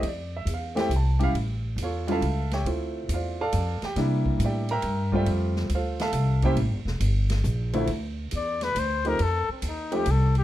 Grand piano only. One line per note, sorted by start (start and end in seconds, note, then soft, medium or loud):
0.08 0.34 D5 medium
0.37 0.49 E5 medium
0.54 0.79 F5 medium
0.75 0.89 A3 medium
0.75 0.89 C4 medium
0.75 0.89 E4 medium
0.75 0.90 G4 loud
0.80 0.92 G5 loud
0.96 1.22 A5 medium
1.19 1.33 G3 medium
1.19 1.33 C#4 medium
1.19 1.33 E4 medium
1.19 1.33 G4 medium
1.24 1.31 F5 loud
1.83 2.07 F4 medium
1.83 2.09 A4 medium
1.83 2.09 C#5 medium
1.83 2.09 F5 medium
2.07 2.20 G3 medium
2.07 2.20 C#4 medium
2.07 2.21 E4 medium
2.07 2.21 F4 medium
2.07 2.50 A5 loud
2.12 2.50 A4 medium
2.12 2.50 E5 medium
2.12 2.51 F5 medium
2.53 2.66 G4 medium
2.53 2.66 C#5 medium
2.53 2.66 E5 medium
2.53 2.66 G5 medium
2.66 3.33 A3 medium
2.66 3.33 C4 medium
2.66 3.33 E4 soft
2.66 3.13 F4 medium
3.14 3.40 F4 medium
3.14 3.40 C5 medium
3.14 3.40 D5 medium
3.14 3.40 F5 medium
3.41 3.80 A4 medium
3.41 3.81 D5 medium
3.41 3.81 F5 medium
3.41 3.80 A5 loud
3.85 3.98 G4 medium
3.85 3.97 G5 loud
3.96 4.63 G3 medium
3.96 4.64 A#3 medium
3.96 4.63 D4 medium
3.96 4.64 E4 medium
4.44 4.71 G4 medium
4.44 4.71 D5 medium
4.44 4.71 E5 medium
4.44 4.70 G5 medium
4.71 5.11 A#4 medium
4.71 5.11 E5 medium
4.71 5.11 G5 medium
4.71 5.11 A#5 loud
5.12 5.67 G3 medium
5.12 5.68 A3 medium
5.12 5.68 C4 medium
5.12 5.68 F4 medium
5.12 5.28 G4 medium
5.12 5.28 D5 medium
5.12 5.28 G5 loud
5.16 5.28 E5 medium
5.75 6.01 F4 medium
5.75 6.00 A4 medium
5.75 6.01 C5 medium
5.75 6.00 F5 medium
6.01 6.41 A4 loud
6.01 6.41 E5 medium
6.01 6.41 F5 medium
6.01 6.41 A5 loud
6.43 6.56 G3 medium
6.43 6.56 A#3 medium
6.43 6.57 C#4 medium
6.43 6.57 E4 medium
6.43 6.53 G4 medium
6.43 6.54 C5 medium
6.43 6.54 E5 medium
6.43 6.53 G5 loud
7.74 7.87 D2 medium
7.74 7.87 F3 medium
7.74 7.87 A3 medium
7.74 7.87 C4 medium
7.74 7.87 E4 medium
9.05 9.18 F3 medium
9.05 9.18 A3 medium
9.05 9.18 C4 medium
9.05 9.18 D#4 medium
9.05 9.18 G4 medium
9.92 10.05 F3 medium
9.92 10.05 A3 medium
9.92 10.05 C4 medium
9.92 10.05 D#4 medium
9.92 10.05 G4 medium